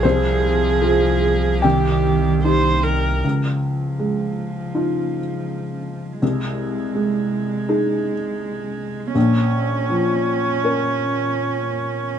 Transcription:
<<
  \new Staff \with { instrumentName = "Viola" } { \time 4/4 \key des \lydian \tempo 4 = 80 aes'2 g'4 c''8 bes'8 | r1 | r1 | r1 | }
  \new Staff \with { instrumentName = "Felt piano" } { \time 4/4 \key des \lydian << { c''2 g''4. r8 | r1 | r1 | r1 | } \\ { c,4 <f' aes'>4 c,4 <ees' g'>4 | des,4 aes4 <ees' f'>2 | c,4 aes4 <ees' aes'>2 | bes,,4 f4 <des' bes'>2 | } >> }
  \new Staff \with { instrumentName = "Cello" } { \clef bass \time 4/4 \key des \lydian f2 ees4.~ ees16 r16 | f1 | aes1 | des'1 | }
  \new Staff \with { instrumentName = "Sub bass" } { \clef bass \time 4/4 \key des \lydian c,1 | r1 | r1 | r1 | }
>>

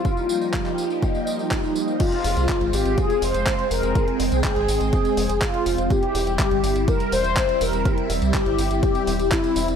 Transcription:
<<
  \new Staff \with { instrumentName = "Analog polysynth" } { \time 4/4 \key f \minor \tempo 4 = 123 f'2. ees'4 | f'4. g'8 aes'8 c''4 bes'8~ | bes'8 r8 aes'4 aes'4 f'4 | g'2 bes'8 c''4 bes'8~ |
bes'8 r8 g'4 g'4 e'8 e'8 | }
  \new Staff \with { instrumentName = "String machine" } { \time 4/4 \key f \minor << { <f g'>1 | f'1 | g''1 | e'1~ |
e'1 | } \\ { <g bes ees'>1 | <aes c'>1~ | <aes c'>1 | <g c'>1~ |
<g c'>1 | } >> }
  \new Staff \with { instrumentName = "Analog synth bass" } { \clef bass \time 4/4 \key f \minor r1 | r8 f,,16 c,16 r16 aes,,16 aes,,16 aes,,16 r8 f,,16 f,,16 r8 f,,16 f,,16 | r8 f,,16 c,16 r16 aes,,16 aes,,16 aes,,16 r8 f,,16 f,,16 r8 f,,16 f,,16 | r8 e,,16 e,,16 r16 g,,16 g,,16 g,,16 r8 e,,16 e,,16 r8 e,,16 e,,16 |
r8 e,,16 c,16 r16 g,,16 g,,16 g,,16 r8 e,,16 e,,16 r8 e,,16 e,,16 | }
  \new DrumStaff \with { instrumentName = "Drums" } \drummode { \time 4/4 <bd tamb>16 tamb16 tamb16 tamb16 <hc bd tamb>16 <hc tamb>16 tamb16 tamb16 <bd tamb>16 tamb16 tamb16 tamb16 <hc bd tamb>16 tamb16 tamb16 tamb16 | <cymc hh bd tamb>16 hh16 <hho tamb>16 <hh tamb>16 <hc hh bd>16 hh16 <hho tamb>16 <hh tamb>16 <hh bd tamb>16 <hh tamb>16 <hho tamb>16 <hh tamb>16 <hc hh bd tamb>16 hh16 <hho tamb>16 <hh tamb>16 | <hh bd tamb>16 hh16 <hho tamb>16 <hh tamb>16 <hc hh bd tamb>16 hh16 <hho tamb>16 <hh tamb>16 <hh bd tamb>16 <hh tamb>16 <hho tamb>16 <hh tamb>16 <hc hh bd>16 hh16 <hho tamb>16 <hh tamb>16 | <hh bd tamb>16 hh16 <hho tamb>16 <hh tamb>16 <hc hh bd tamb>16 hh16 <hho tamb>16 <hh tamb>16 <hh bd tamb>16 <hh tamb>16 <hho tamb>16 <hh tamb>16 <hc hh bd tamb>16 hh16 <hho tamb>16 <hh tamb>16 |
<hh bd tamb>16 hh16 <hho tamb>16 <hh tamb>16 <hc hh bd tamb>16 hh16 <hho tamb>16 <hh tamb>16 <hh bd tamb>16 <hh tamb>16 <hho tamb>16 <hh tamb>16 <hc hh bd tamb>16 <hh tamb>16 <hho tamb>16 <hh tamb>16 | }
>>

